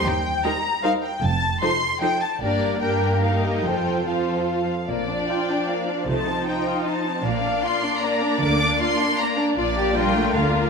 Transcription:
<<
  \new Staff \with { instrumentName = "Violin section" } { \time 3/4 \key bes \major \tempo 4 = 153 g''4 bes''4 f''8 g''8 | a''4 c'''4 g''8 a''8 | d''4 g''4 f''8 ees''8 | g''4 f''4 f''4 |
d''4 g''4 f''4 | a''4 g''4 a''4 | f''4 c'''4 bes''4 | d'''4 c'''4 bes''8 r8 |
d''4 g''4 f''4 | }
  \new Staff \with { instrumentName = "Violin section" } { \time 3/4 \key bes \major << { r4 c''4 c''4 | r4 c''4 c''4 | bes'4 bes'2 | c''4 c''4. r8 |
d''2. | c''2. | d''2.~ | d''2. |
d''4 bes'2 | } \\ { r4 bes'4 bes'4 | r4 a'4 a'4 | g'4 g'2 | a'4 a'4. r8 |
bes8 d'8 f'8 d'8 bes8 d'8 | a8 c'8 ees'8 f'8 ees'8 c'8 | bes8 d'8 f'8 d'8 bes8 d'8 | bes8 d'8 f'8 d'8 bes8 d'8 |
f'8 g'8 f'4 f'4 | } >> }
  \new Staff \with { instrumentName = "Viola section" } { \time 3/4 \key bes \major << { r4 ees'4 ees'4 | r4 ees'4 ees'4 | d'4 d'4 ees'4 | f'4 f'4. r8 |
d'2. | ees'2. | d'2.~ | d'2. |
d'2. | } \\ { r4 g4 g4 | r4 f4 f4 | bes4 bes2 | f4 f4. r8 |
f2.~ | f2. | bes2.~ | bes2. |
bes4 g8 a8 bes8 bes8 | } >> }
  \new Staff \with { instrumentName = "Cello section" } { \clef bass \time 3/4 \key bes \major ees,4 r2 | f,4 r2 | g,2. | f,2~ f,8 r8 |
bes,4 r2 | c4 r2 | bes,4 r2 | d4 r2 |
bes,2 d4 | }
  \new Staff \with { instrumentName = "Double bass section" } { \clef bass \time 3/4 \key bes \major ees,4 r2 | f,,4 r2 | g,,4 r2 | f,,4 r2 |
bes,,4 r2 | c,4 r2 | bes,,4 r2 | d,4 r2 |
bes,,2 d,4 | }
>>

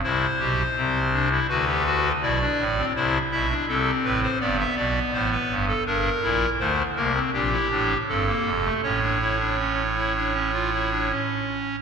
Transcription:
<<
  \new Staff \with { instrumentName = "Pipe organ" } { \time 4/4 \key g \mixolydian \tempo 4 = 82 << { c''2 b'4 d''4 | c''8 e''8 a'8 b'16 c''16 d''16 e''16 d''8 c''16 b'8 a'16 | \key a \phrygian bes'4 c''8 bes'8 g'4 a'4 | cis''2.~ cis''8 r8 | } \\ { e'8 g'8 c'8 d'16 e'16 fis'16 g'16 fis'8 e'16 d'8 c'16 | e'8 e'16 d'16 c'4 b2 | d'8 e'8 a8 bes16 c'16 d'16 e'16 d'8 c'16 bes8 a16 | cis'16 d'16 e'16 d'16 cis'8 e'16 d'16 cis'16 f'16 e'16 d'16 cis'4 | } >> }
  \new Staff \with { instrumentName = "Pipe organ" } { \clef bass \time 4/4 \key g \mixolydian <c, c>8 <b,, b,>8 <c, c>4 <d, d>4 <b,, b,>8 <a,, a,>8 | <c, c>8 <b,, b,>8 <c, c>8 <a,, a,>8 <g,, g,>8 <b,, b,>8 <a,, a,>8 <g,, g,>8 | \key a \phrygian <g,, g,>8 <bes,, bes,>8 <d, d>8 <c, c>8 <bes,, bes,>8 <a,, a,>8 <g,, g,>8 <f,, f,>8 | <a,, a,>2.~ <a,, a,>8 r8 | }
>>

